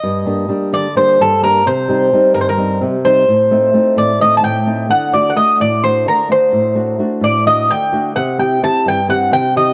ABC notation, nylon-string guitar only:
X:1
M:7/8
L:1/8
Q:1/4=129
K:Gm
V:1 name="Nylon-string guitar"
G,, [G,B,D] [G,B,D] D, [G,B,D] G,, [G,B,D] | C, [G,CE] [G,CE] G,, [G,CE] C, [G,CE] | A,, [A,CE] [A,CE] A,, [A,CE] A,, [A,CE] | D, [A,D^F] [A,DF] A,, [A,DF] D, [A,DF] |
A,, [A,D^F] [A,DF] A,, [A,DF] D, [A,DF] | C, [C=EG] [CEG] G,, [CEG] C, [CEG] |]